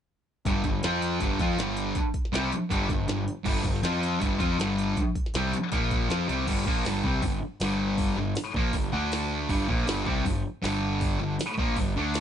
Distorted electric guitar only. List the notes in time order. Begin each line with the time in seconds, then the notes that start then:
0.46 G2 D3 G3
0.64 G2 D3
0.83 F3 C4 F4
1.21 G2 D3 G3
1.40 F3 C4 F4
1.58 G2 D3 G3
2.32 C3 G3 C4
2.52 muted distorted electric guitar stroke
2.70 G2 D3 G3
2.89 G2 D3
3.09 G2 D3
3.45 G2 D3 G3
3.64 G2 D3
3.83 F3 C4 F4
4.19 G2 D3 G3
4.39 F3 C4 F4
4.59 G2 D3 G3
5.35 C3 G3 C4
5.54 muted distorted electric guitar stroke
5.71 A#2 F3 A#3
6.09 F3 C4 F4
6.28 C3 G3 C4
6.47 G2 D3 G3
6.66 A#2 F3 A#3
6.85 G2 D3 G3
7.04 C3 G3 C4
7.23 G2 D3
7.61 G2 D3 G3
8.18 G2 D3
8.56 A#2 F3 A#3
8.74 G2 D3
8.92 D3 A3 D4
9.49 G2 D3 G3
9.68 A#2 F3 A#3
9.86 G2 D3 G3
10.05 C3 G3 C4
10.25 G2 D3
10.62 G2 D3 G3
11.20 G2 D3
11.58 A#2 F3 A#3
11.78 G2 D3
11.96 D3 A3 D4